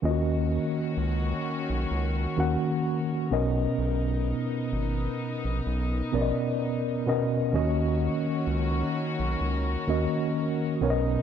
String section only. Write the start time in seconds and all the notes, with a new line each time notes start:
0.03 D#3 C#4 F#4 A#4
3.32 B3 D#4
7.53 D#3 C#4 F#4 A#4
10.82 B3 D#4